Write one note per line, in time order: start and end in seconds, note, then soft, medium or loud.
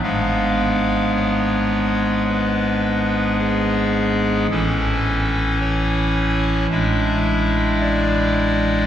0.03 4.47 G#1 medium
0.03 4.46 G#2 medium
0.03 4.47 G#3 soft
0.03 4.47 B3 soft
0.03 4.47 D4 soft
0.03 1.12 F5 loud
1.15 2.24 C#5 medium
2.27 3.36 B4 medium
3.39 4.48 G#4 medium
4.51 6.67 A1 medium
4.51 6.66 A2 medium
4.51 6.66 E3 soft
4.51 6.67 C#4 soft
4.51 6.67 E4 medium
4.51 5.58 A4 loud
5.61 6.67 C#5 loud
6.70 8.87 A1 medium
6.70 8.87 A2 medium
6.70 8.87 G#3 medium
6.70 8.87 D4 medium
6.70 8.87 E4 medium
6.70 7.78 E5 loud
7.81 8.87 D5 loud